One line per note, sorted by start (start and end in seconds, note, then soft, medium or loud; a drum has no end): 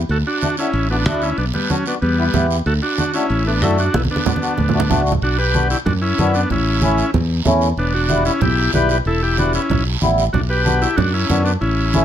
0.09 0.22 D2 loud
0.09 0.18 F#4 medium
0.09 0.18 A4 medium
0.09 long guiro medium
0.27 0.56 D4 medium
0.27 0.56 F#4 medium
0.41 0.47 A3 medium
0.41 0.47 D4 medium
0.41 0.48 F#4 medium
0.41 high conga medium
0.41 short guiro medium
0.57 0.69 A3 medium
0.57 0.88 C#4 medium
0.57 0.70 D4 medium
0.57 0.88 E4 medium
0.57 0.70 F#4 medium
0.57 short guiro medium
0.73 1.06 A1 medium
0.73 long guiro medium
0.90 0.96 A3 medium
0.90 1.05 B3 medium
0.90 0.96 D4 medium
0.90 1.05 D4 medium
0.90 0.96 F#4 medium
1.06 1.31 D2 medium
1.06 1.28 A3 medium
1.06 1.21 D4 medium
1.06 1.29 D4 medium
1.06 1.29 E4 medium
1.06 1.23 F#4 medium
1.06 high conga medium
1.06 short guiro medium
1.22 1.37 C#4 medium
1.22 1.37 E4 medium
1.22 short guiro medium
1.38 1.50 B1 loud
1.38 1.45 B3 medium
1.38 1.45 D4 medium
1.38 long guiro medium
1.54 1.69 G3 medium
1.54 1.71 B3 medium
1.54 high conga medium
1.69 1.85 F#3 medium
1.69 1.75 B3 medium
1.69 1.86 C#4 medium
1.69 1.75 D4 medium
1.69 1.76 F#4 medium
1.69 high conga medium
1.69 short guiro medium
1.86 1.97 B3 medium
1.86 1.94 B3 medium
1.86 1.97 D4 medium
1.86 1.95 D4 medium
1.86 1.97 F#4 medium
1.86 short guiro medium
2.02 2.28 E2 medium
2.02 2.46 G3 medium
2.02 2.47 B3 medium
2.02 long guiro medium
2.18 2.23 B3 medium
2.18 2.24 E4 medium
2.18 2.24 G4 medium
2.34 2.60 E2 medium
2.34 2.56 B3 medium
2.34 2.56 E4 medium
2.34 2.57 G4 medium
2.34 high conga medium
2.34 low conga medium
2.34 short guiro medium
2.51 short guiro medium
2.66 2.79 D2 loud
2.66 2.73 F#4 medium
2.66 2.74 A4 medium
2.66 long guiro medium
2.82 3.12 D4 medium
2.82 3.15 F#4 medium
2.98 3.04 A3 medium
2.98 3.04 D4 medium
2.98 3.04 F#4 medium
2.98 high conga medium
2.98 short guiro medium
3.14 3.25 A3 medium
3.14 3.44 C#4 medium
3.14 3.25 D4 medium
3.14 3.47 E4 medium
3.14 3.26 F#4 medium
3.14 short guiro medium
3.30 3.62 A1 medium
3.30 long guiro medium
3.46 3.51 A3 medium
3.46 3.61 B3 medium
3.46 3.52 D4 medium
3.46 3.63 D4 medium
3.46 3.52 A4 medium
3.61 3.87 F#2 medium
3.61 3.84 A3 medium
3.61 3.77 A3 medium
3.61 3.84 D4 medium
3.61 3.78 E4 medium
3.61 3.84 F#4 medium
3.61 high conga medium
3.61 short guiro medium
3.78 3.94 D4 medium
3.78 3.95 F#4 medium
3.78 short guiro medium
3.94 4.07 B1 loud
3.94 4.02 B3 medium
3.94 4.02 E4 medium
3.94 high conga medium
3.94 long guiro medium
4.05 high conga medium
4.11 4.25 B3 medium
4.11 4.25 D4 medium
4.16 high conga medium
4.25 4.31 B3 medium
4.25 5.02 B3 medium
4.25 4.31 D4 medium
4.25 5.02 D4 medium
4.25 4.32 F#4 medium
4.25 low conga loud
4.25 short guiro medium
4.36 high conga loud
4.42 4.53 B3 medium
4.42 4.53 D4 medium
4.42 4.53 F#4 medium
4.42 short guiro medium
4.58 4.92 D2 medium
4.58 low conga medium
4.58 long guiro medium
4.69 low conga medium
4.73 4.79 A3 medium
4.73 4.79 D4 medium
4.73 4.80 F#4 medium
4.80 low conga medium
4.89 5.16 C#2 medium
4.89 5.12 A3 medium
4.89 5.12 D4 medium
4.89 5.12 F#4 loud
4.89 low conga loud
4.89 short guiro medium
5.06 short guiro medium
5.12 low conga medium
5.22 5.73 B1 medium
5.22 5.38 D4 medium
5.22 5.37 F#4 medium
5.22 high conga soft
5.22 long guiro medium
5.38 5.68 G4 medium
5.38 5.68 B4 loud
5.54 5.76 B3 medium
5.54 5.77 D4 medium
5.54 5.77 F#4 medium
5.54 high conga medium
5.54 short guiro medium
5.70 5.78 E4 medium
5.70 5.77 G4 medium
5.70 short guiro medium
5.86 6.12 F#2 loud
5.86 5.93 D4 medium
5.86 5.93 F#4 medium
5.86 high conga soft
5.86 low conga medium
5.86 long guiro medium
6.02 6.32 C#4 medium
6.02 6.35 E4 loud
6.18 6.44 F#2 medium
6.18 6.41 B3 medium
6.18 6.41 D4 medium
6.18 6.41 F#4 medium
6.18 high conga medium
6.18 short guiro medium
6.34 6.49 B3 medium
6.34 6.49 D4 medium
6.34 short guiro medium
6.50 7.01 A1 medium
6.50 7.11 C#4 medium
6.50 7.11 E4 medium
6.50 high conga soft
6.50 low conga medium
6.50 long guiro medium
6.81 7.04 A3 medium
6.81 7.04 C#4 medium
6.81 7.05 E4 medium
6.81 high conga medium
6.81 short guiro medium
6.98 short guiro medium
7.14 7.40 E2 loud
7.14 high conga soft
7.14 low conga medium
7.14 long guiro medium
7.45 7.71 E2 loud
7.45 7.68 A3 medium
7.45 7.68 C#4 medium
7.45 7.68 E4 loud
7.45 high conga medium
7.45 low conga medium
7.45 short guiro medium
7.61 short guiro medium
7.77 8.28 E1 medium
7.77 7.93 B3 medium
7.77 7.94 D4 medium
7.77 high conga soft
7.77 long guiro medium
7.94 8.24 D4 medium
7.94 8.24 F#4 medium
8.08 8.31 G3 medium
8.08 8.31 B3 medium
8.08 8.32 E4 medium
8.08 high conga medium
8.08 short guiro medium
8.25 8.41 C#4 medium
8.25 8.41 E4 medium
8.25 short guiro medium
8.41 8.67 B1 loud
8.41 8.72 E4 medium
8.41 8.71 G4 medium
8.41 high conga soft
8.41 low conga medium
8.41 long guiro medium
8.73 8.99 B1 loud
8.73 8.96 G3 medium
8.73 8.96 B3 medium
8.73 8.96 E4 medium
8.73 8.89 G4 medium
8.73 8.90 B4 loud
8.73 high conga medium
8.73 short guiro medium
8.89 8.98 G4 medium
8.89 8.98 B4 medium
8.89 short guiro medium
9.05 9.57 E1 medium
9.05 9.21 E4 medium
9.05 9.23 A4 loud
9.05 high conga soft
9.05 long guiro medium
9.23 9.37 E4 medium
9.23 9.39 G4 medium
9.37 9.60 G3 medium
9.37 9.60 B3 medium
9.37 9.53 D4 medium
9.37 9.60 E4 medium
9.37 9.53 F#4 medium
9.37 high conga medium
9.37 short guiro medium
9.53 9.84 C#4 medium
9.53 9.84 E4 medium
9.53 short guiro medium
9.70 9.95 B1 loud
9.70 high conga soft
9.70 low conga medium
9.70 long guiro medium
10.01 10.27 A1 medium
10.01 10.24 G3 medium
10.01 10.24 B3 medium
10.01 10.24 E4 medium
10.01 high conga medium
10.01 short guiro medium
10.18 short guiro medium
10.33 10.84 B1 medium
10.33 10.41 D4 medium
10.33 10.40 F#4 medium
10.33 high conga soft
10.33 low conga medium
10.33 long guiro medium
10.50 10.80 G4 medium
10.50 10.82 B4 loud
10.65 10.87 B3 medium
10.65 10.87 D4 medium
10.65 10.88 F#4 medium
10.65 high conga medium
10.65 short guiro medium
10.81 10.96 E4 medium
10.81 10.96 G4 medium
10.81 short guiro medium
10.96 11.23 F#2 loud
10.96 11.12 D4 medium
10.96 11.13 F#4 medium
10.96 high conga soft
10.96 low conga medium
10.96 long guiro medium
11.14 11.43 C#4 medium
11.14 11.43 E4 medium
11.29 11.55 F#2 loud
11.29 11.51 B3 medium
11.29 11.52 D4 medium
11.29 11.52 F#4 medium
11.29 high conga medium
11.29 short guiro medium
11.44 11.53 B3 medium
11.44 11.52 D4 medium
11.44 short guiro medium
11.61 12.05 A1 medium
11.61 12.05 C#4 medium
11.61 12.05 E4 medium
11.61 high conga soft
11.61 long guiro medium
11.93 12.05 A3 medium
11.93 12.05 C#4 medium
11.93 12.05 E4 medium
11.93 high conga medium
11.93 short guiro medium